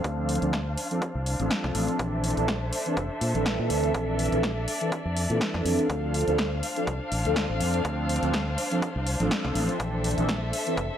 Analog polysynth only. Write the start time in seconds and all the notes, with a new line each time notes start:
0.04 F3 C4 D4 A4
0.42 F3 C4 D4 A4
0.90 F3 C4 D4 A4
1.39 F3 C4 D4 A4
1.99 E3 C4 D4 A4
2.37 E3 C4 D4 A4
2.85 E3 C4 D4 A4
3.34 E3 C4 D4 A4
3.94 E3 C4 D4 A4
4.32 E3 C4 D4 A4
4.81 E3 C4 D4 A4
5.29 E3 C4 D4 A4
5.89 F3 C4 D4 A4
6.27 F3 C4 D4 A4
6.76 F3 C4 D4 A4
7.24 F3 C4 D4 A4
7.84 F3 C4 D4 A4
8.22 F3 C4 D4 A4
8.71 F3 C4 D4 A4
9.19 F3 C4 D4 A4
9.79 E3 C4 D4 A4
10.17 E3 C4 D4 A4
10.66 E3 C4 D4 A4